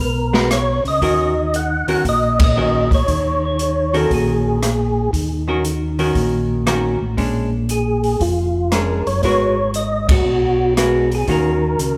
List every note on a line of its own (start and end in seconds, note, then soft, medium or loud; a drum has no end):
0.00 0.81 B1 medium
0.00 0.48 A#4 medium
0.33 0.49 G#3 medium
0.33 0.49 B3 medium
0.33 0.49 F#4 medium
0.33 0.49 A#4 medium
0.33 snare soft
0.51 0.84 C#5 medium
0.51 cross-stick medium
0.51 closed hi-hat medium
0.85 1.00 C#2 medium
0.85 1.04 D#5 medium
0.85 open hi-hat soft
1.02 1.84 D#2 medium
1.02 1.33 D#3 medium
1.02 1.33 C#4 medium
1.02 1.34 F#4 medium
1.02 1.34 A#4 medium
1.02 1.56 D#5 medium
1.02 kick soft
1.02 open hi-hat soft
1.54 1.87 F#5 medium
1.54 closed hi-hat medium
1.88 1.96 D#2 soft
1.88 2.03 D#3 medium
1.88 2.03 C#4 medium
1.88 2.03 F#4 medium
1.88 2.04 A#4 medium
1.88 2.06 F#5 loud
1.88 open hi-hat soft
2.05 3.03 A#1 medium
2.05 kick soft
2.05 open hi-hat soft
2.09 2.39 D#5 medium
2.40 kick medium
2.40 ride medium
2.44 2.90 D#5 loud
2.57 2.88 D#3 soft
2.57 2.88 C#4 medium
2.57 2.88 F#4 medium
2.57 2.88 A#4 medium
2.91 3.44 C#5 medium
2.91 kick medium
2.91 open hi-hat soft
3.08 4.06 D#2 medium
3.08 kick soft
3.08 open hi-hat soft
3.45 3.97 C#5 medium
3.59 closed hi-hat medium
3.94 4.58 D#3 medium
3.94 4.58 C#4 medium
3.94 4.59 F#4 medium
3.94 4.12 A4 medium
3.94 4.59 A#4 medium
3.94 open hi-hat soft
4.10 5.09 A#1 medium
4.10 5.11 G#4 medium
4.10 kick soft
4.10 open hi-hat soft
4.63 cross-stick medium
4.63 closed hi-hat medium
5.13 6.11 D#2 medium
5.13 kick soft
5.13 open hi-hat soft
5.48 5.63 D#3 medium
5.48 5.63 C#4 medium
5.48 5.63 F#4 medium
5.48 5.63 A#4 medium
5.65 closed hi-hat medium
5.99 6.63 D#3 medium
5.99 6.64 C#4 medium
5.99 6.64 F#4 medium
5.99 6.64 A#4 medium
5.99 open hi-hat soft
6.15 6.97 A#1 medium
6.15 kick soft
6.15 open hi-hat soft
6.66 6.98 D#3 medium
6.66 6.98 C#4 medium
6.66 6.98 F#4 medium
6.66 6.98 A#4 medium
6.66 cross-stick medium
6.66 closed hi-hat medium
7.01 7.17 A1 medium
7.17 8.16 A#1 medium
7.17 7.49 G#3 medium
7.17 7.49 C#4 medium
7.17 7.50 D4 medium
7.17 kick soft
7.17 open hi-hat soft
7.69 8.23 G#4 medium
7.69 closed hi-hat medium
8.04 open hi-hat soft
8.20 9.02 F1 medium
8.20 8.74 F4 medium
8.20 kick soft
8.20 open hi-hat soft
8.72 9.03 G#3 medium
8.72 9.03 C#4 medium
8.72 9.04 D4 medium
8.72 9.08 A#4 medium
8.72 cross-stick medium
8.72 closed hi-hat medium
9.06 9.22 F#1 medium
9.06 9.22 C#5 medium
9.06 open hi-hat soft
9.23 10.22 G#1 medium
9.23 9.55 G#3 soft
9.23 9.55 B3 medium
9.23 9.55 F#4 medium
9.23 9.55 A#4 medium
9.23 9.71 C#5 medium
9.23 kick soft
9.23 open hi-hat soft
9.74 10.07 D#5 medium
9.74 closed hi-hat medium
10.09 10.74 F#4 medium
10.09 kick medium
10.09 ride medium
10.25 11.24 B1 medium
10.77 11.09 G#3 medium
10.77 11.09 B3 medium
10.77 11.09 F#4 medium
10.77 11.09 A#4 medium
10.77 cross-stick medium
10.77 closed hi-hat medium
11.12 11.29 G#4 medium
11.12 open hi-hat soft
11.27 11.76 D#2 medium
11.27 11.97 D#3 medium
11.27 11.97 A#3 medium
11.27 11.97 C#4 medium
11.27 11.97 F#4 medium
11.27 11.97 A#4 medium
11.27 kick soft
11.27 open hi-hat soft
11.79 11.97 C#2 medium
11.79 closed hi-hat medium